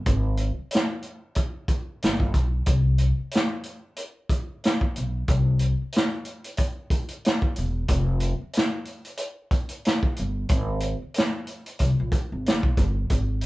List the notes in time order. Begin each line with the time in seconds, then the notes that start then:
0.06 G#1, kick, closed hi-hat
0.37 closed hi-hat
0.59 muted upright bass stroke
0.71 closed hi-hat
0.75 snare
1.02 closed hi-hat
1.35 kick, closed hi-hat
1.68 kick, closed hi-hat
2.02 G1, snare, closed hi-hat
2.20 kick
2.34 B1, kick, closed hi-hat
2.66 C2, kick, closed hi-hat
2.98 closed hi-hat
3.20 muted upright bass stroke
3.31 closed hi-hat
3.35 snare
3.63 closed hi-hat
3.96 closed hi-hat
4.29 kick, closed hi-hat
4.64 snare, closed hi-hat
4.81 kick
4.96 B1, closed hi-hat
5.28 C2, kick, closed hi-hat
5.59 closed hi-hat
5.82 muted upright bass stroke
5.92 closed hi-hat
5.97 snare
6.25 closed hi-hat
6.44 closed hi-hat
6.57 kick, closed hi-hat
6.90 kick, closed hi-hat
7.08 closed hi-hat
7.25 snare, closed hi-hat
7.42 kick
7.56 E1, closed hi-hat
7.88 F1, kick, closed hi-hat
8.20 closed hi-hat
8.41 muted upright bass stroke
8.53 closed hi-hat
8.57 snare
8.85 closed hi-hat
9.05 closed hi-hat
9.17 closed hi-hat
9.51 kick, closed hi-hat
9.69 closed hi-hat
9.85 snare, closed hi-hat
10.03 kick
10.16 G1, closed hi-hat
10.49 G#1, kick, closed hi-hat
10.80 closed hi-hat
11.02 muted upright bass stroke
11.14 closed hi-hat
11.18 snare
11.47 closed hi-hat
11.66 closed hi-hat
11.79 C2, kick, closed hi-hat
12.00 A#1
12.12 kick, closed hi-hat
12.32 G#1
12.46 G1, snare, closed hi-hat
12.63 B1, kick
12.77 G1, kick, closed hi-hat
13.10 G#1, kick, closed hi-hat
13.41 closed hi-hat